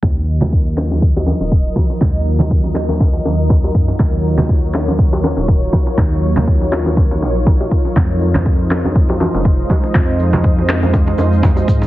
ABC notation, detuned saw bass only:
X:1
M:4/4
L:1/16
Q:"Swing 16ths" 1/4=121
K:Ebdor
V:1 name="Detuned saw bass" clef=bass
E,,8- E,,2 z E,,,2 z3 | E,,8- E,, z E,,3 z G,, z | E,,8- E,,2 z E,,,2 z3 | E,,8- E,,2 B,,,3 z3 |
F,,8- F,,2 z F,,,2 z3 | F,,8- F,, z F,,3 z A,, z |]